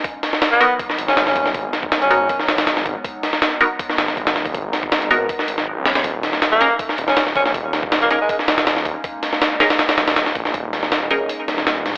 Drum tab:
HH |o-o-o-o-o-o-o-o-|o-o-oxo-o-ooo-o-|o-o-o-o-o-o-oo-o|o-o-oxo-o-o---oo|
SD |--ooo----o-ooo-o|--o-o----ooooo--|--ooo----ooo-oo-|--o-o----o-o--oo|
BD |o-------o-----o-|o--o----o-----o-|o-------o---o--o|o--o----o-------|

HH |o-o-o-o-o-o-o-o-|o-o-oxo-o-ooo-o-|o-o-o-ooooooo-o-|o-o-o-o-o-o-o-o-|
SD |--ooo----o-ooo-o|--o-o----ooooo--|--ooo-oooooooo-o|--ooo-----ooo-o-|
BD |o-------o-----o-|o--o----o-----o-|o-------------o-|o---------------|